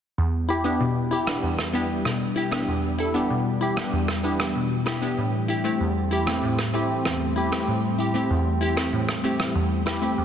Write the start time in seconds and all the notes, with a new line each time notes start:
0.18 E2 E3 G3 B3 D4 G4
0.49 E4 G4
0.64 B3 D4 E4 G4
0.81 B2
1.11 E4 G4
1.27 B3 D4 E4 G4, cross-stick
1.43 E2
1.59 cross-stick
1.73 B3 D4 E4 G4
2.05 B2, cross-stick
2.36 E4 G4
2.51 B3 D4 E4 G4, cross-stick
2.68 E2
2.98 E4 A4
3.14 B3 D4 E4 G4
3.30 B2
3.61 E4 G4
3.76 B3 D4 E4 G4, cross-stick
3.93 E2
4.08 cross-stick
4.23 B3 D4 E4 G4
4.40 cross-stick
4.55 B2
4.86 E4 G4, cross-stick
5.02 B3 D4 E4 G4
5.18 A2 G3 A3 C4
5.48 E4 G4
5.64 A3 C4 E4 G4
5.80 E2
6.11 E4 G4
6.27 A3 C4 E4 G4, cross-stick
6.43 A2
6.59 cross-stick
6.73 A3 C4 E4 G4
7.05 E2, cross-stick
7.36 E4 G4
7.52 A3 C4 E4 G4, cross-stick
7.68 A2
7.98 E4 G4
8.14 A3 C4 E4 G4
8.30 E2
8.61 E4 G4
8.76 A3 C4 E4 G4, cross-stick
8.93 A2
9.09 cross-stick
9.23 A3 C4 E4 G4
9.40 cross-stick
9.55 E2
9.86 E4 G4, cross-stick
10.01 A3 C4 E4 G4
10.18 E2 G3 B3 D4